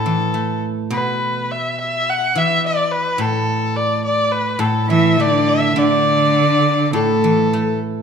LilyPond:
<<
  \new Staff \with { instrumentName = "Erhu" } { \time 2/4 \tempo 4 = 104 a'4 r8 b'8~ | b'8 e''8 e''8 fis''8 | e''8 d''8 b'8 a'8~ | a'8 d''8 d''8 b'8 |
a'8 e''8 d''8 e''8 | d''2 | a'4. r8 | }
  \new Staff \with { instrumentName = "Xiao" } { \time 2/4 r2 | r2 | r2 | r2 |
r8 e'8 d'4 | d'2 | a'4. r8 | }
  \new Staff \with { instrumentName = "Guzheng" } { \clef bass \time 2/4 <a, e>8 a4 b,8~ | b,2 | e4. a,8~ | a,2 |
a,8 e8 a4 | d2 | a,8 e8 a4 | }
  \new Staff \with { instrumentName = "Cello" } { \clef bass \time 2/4 r2 | r2 | r2 | r2 |
r8 e8 d4 | d2 | a,4. r8 | }
>>